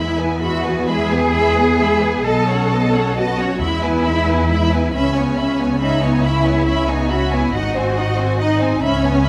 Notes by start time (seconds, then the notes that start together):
Already playing: E2 G#3 E4 E5 B5
0.17 B3 B4 G#5
0.41 G#3 F#4 E5 B5
0.63 B3 B4 G#5
0.88 G#3 G#4 E5 B5
1.10 B3 B4 G#5
1.33 G#3 E5 B5
1.56 B3 B4 G#5
1.78 G#3 E5 B5
2.01 B3 B4 G#5
2.25 B1 B3 A4 D#5 A5
2.48 C#4 C#5 F#5
2.71 B3 D#5 A5
2.93 C#4 C#5 F#5
3.16 B3 F#4 D#5 A5
3.39 C#4 C#5 F#5
3.60 E2 G#3 E4 E5 B5
3.83 B3 B4 G#5
4.04 G#3 E5 B5
4.26 B3 B4 G#5
4.50 G#3 E5 B5
4.71 B3 B4 G#5
4.93 C#2 C#4 E5 B5
5.14 B3 C#5 G#5
5.37 C#4 E5 B5
5.58 B3 C#5 G#5
5.80 C#4 D#4 E5 B5
6.01 B3 C#5 G#5
6.23 C#4 E4 E5 B5
6.44 B3 C#5 G#5
6.66 C#4 E5 B5
6.87 B3 D#4 C#5 G#5
7.09 C#4 F#4 E5 B5
7.31 B3 E4 C#5 G#5
7.53 G#1 D#4 F#4 D#5 F#5
7.75 C4 C5 G#5
7.96 D#4 D#5 F#5
8.17 C4 C5 G#5
8.38 D#4 D#5 F#5
8.59 C4 C5 G#5
8.80 C#2 C#4 E5 B5
9.02 B3 C#5 G#5
9.23 C#4 E5 B5